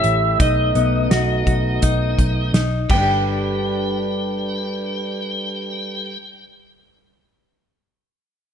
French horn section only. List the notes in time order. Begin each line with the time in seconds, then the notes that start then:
Already playing: A3 C#4 G4
0.40 B3 D#4
2.90 G3 D4 G4 A4 B4